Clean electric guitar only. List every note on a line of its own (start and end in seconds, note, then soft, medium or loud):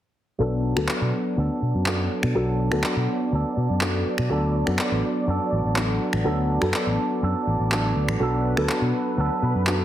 0.39 1.36 F#3 medium
0.39 1.37 B3 medium
0.39 1.38 D4 medium
0.39 1.39 A4 medium
1.36 2.34 F#3 medium
1.36 2.35 B3 medium
1.36 2.35 D4 loud
1.36 2.36 A4 medium
2.34 2.83 F#3 medium
2.34 2.83 B3 medium
2.34 2.84 D4 medium
2.34 2.85 A4 medium
2.83 3.31 F#3 medium
2.83 3.33 B3 medium
2.83 3.34 D4 medium
2.83 3.35 A4 medium
3.32 4.29 F#3 medium
3.32 4.30 B3 medium
3.32 4.31 D4 medium
3.32 4.32 A4 medium
4.29 5.26 F#3 medium
4.29 5.27 B3 medium
4.29 5.29 D4 medium
4.29 5.30 A4 medium
5.27 6.25 F#3 medium
5.27 6.25 B3 medium
5.27 6.26 D4 medium
5.27 6.26 A4 loud
6.25 6.73 F#3 medium
6.25 6.74 B3 medium
6.25 6.75 D4 medium
6.25 6.75 A4 medium
6.73 7.22 F#3 medium
6.73 7.23 B3 medium
6.73 7.23 D4 medium
6.73 7.23 A4 medium
7.22 7.71 F#3 medium
7.22 7.71 B3 medium
7.22 7.72 D4 medium
7.22 7.73 A4 medium
7.71 8.19 F#3 medium
7.71 8.20 B3 medium
7.71 8.21 D4 medium
7.71 8.22 A4 medium
8.19 9.17 F#3 medium
8.19 9.18 B3 medium
8.19 9.19 D4 medium
8.19 9.20 A4 medium
9.17 9.85 F#3 medium
9.17 9.85 B3 medium
9.17 9.85 D4 medium
9.17 9.85 A4 medium